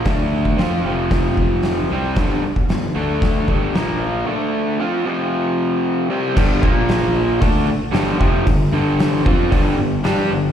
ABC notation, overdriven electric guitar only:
X:1
M:4/4
L:1/8
Q:1/4=114
K:Gm
V:1 name="Overdriven electric guitar" clef=bass
[D,A,D]2 [F,CF] [F,,C,F,]4 [C,G,C] | [G,,D,G,] z [G,,D,] [D,A,D]2 [G,,D,G,] [B,,F,B,]2 | [D,A,D]2 [F,CF] [F,,C,F,]4 [C,G,C] | [G,,D,G,] [B,,F,B,]3 [D,A,D] z [G,,D,G,] [F,,C,F,] |
[G,,D,] [G,,D,G,]2 [F,CF] [G,,D,G,] [G,,D,] [G,DG] [G,,D,] |]